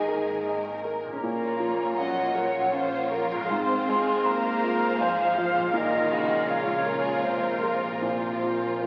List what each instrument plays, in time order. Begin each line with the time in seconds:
Already playing: double bass section G#1, harp G#2 A#3 D#4 G#4, grand piano G#2 D#3 D#4, cello section D#3, viola section A#3 D#4, violin section G#4 A#4 G#5, flute section D#5
0.08 grand piano A#4
0.48 grand piano D#5
0.85 grand piano A#4
1.03 harp A#2
1.08 harp A#3
1.12 harp C#4
1.17 harp A#4
1.22 double bass section A#1, grand piano A#2, cello section A#3, viola section A#3 C#4, violin section F4 C#5, flute section A#5
1.60 grand piano F3
1.98 cello section F#3, grand piano C#4, violin section D#5, flute section F#5
2.35 grand piano A#4, violin section C#5
2.72 cello section F3, grand piano C#4, violin section C5, flute section F5
3.12 violin section A#4, grand piano A#4
3.32 harp G#2
3.36 harp G#3
3.41 harp F5
3.45 harp C5
3.49 double bass section G#1, grand piano G#2, viola section G#3 F5, cello section C4, violin section C5, flute section C6
3.89 grand piano G#3, violin section G#4
4.25 cello section A#3, grand piano C4, violin section A#4, flute section A#5
4.64 grand piano F4
4.98 cello section F3, violin section G#4, grand piano C5, flute section F5
5.36 grand piano F4, violin section C5
5.55 harp A#2
5.68 harp A#4
5.73 double bass section A#1, grand piano A#2, cello section D#3, violin section F4 A#4, flute section D#5
6.09 grand piano C#3, violin section F#4
6.46 cello section C#3, violin section F4, grand piano F4, flute section C#5
6.86 violin section G#4, grand piano A#4
7.22 cello section C3, violin section A#4, flute section C5, grand piano F5
7.63 grand piano A#4
7.84 harp A#2
8.02 grand piano A#2, cello section C3, viola section F3 A#3, violin section F4, flute section C5
8.43 grand piano F3
8.80 cello section A#2, violin section F4, grand piano F4, flute section A#4